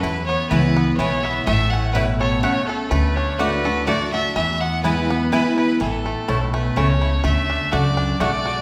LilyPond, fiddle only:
\new Staff \with { instrumentName = "Fiddle" } { \time 3/4 \key a \major \tempo 4 = 125 b'8 cis''8 b'4 cis''8 e''8 | e''8 fis''8 b'8 cis''8 cis''8 a'8 | b'8 cis''8 b'4 d''8 e''8 | e''8 fis''8 b'4 b'8 b'8 |
a'4. b'8 cis''4 | e''4 d''4 d''4 | }